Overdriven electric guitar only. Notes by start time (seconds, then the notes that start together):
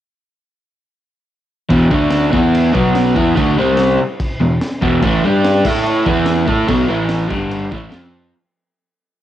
1.69 E2 B2 E3
1.90 D3 A3 D4
2.32 E3 B3 E4
2.74 B2 F#3 B3
3.16 E3 B3 E4
3.36 D3 A3 D4
3.58 C3 G3 C4
3.99 muted overdriven electric guitar stroke
4.40 E2 B2
4.81 E2 B2 E3
5.03 A2 E3 A3
5.24 G3 D4 G4
5.66 A3 E4 A4
6.06 E3 B3 E4
6.47 A3 E4 A4
6.69 B2 F#3 B3
6.88 A2 E3 A3
7.30 G2 D3 G3
7.72 A2 E3 A3
7.91 F3 C4 F4